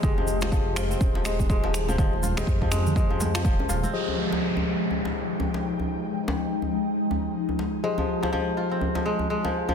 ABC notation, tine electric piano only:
X:1
M:4/4
L:1/16
Q:"Swing 16ths" 1/4=123
K:Fm
V:1 name="Tine electric piano"
[GAe]3 [Ge]6- [Ge] [GAe]6 | [GAe] z2 [GAe]12- [GAe] | [F,GAce]16- | [F,GAce]16 |
[F,GAce]16 |]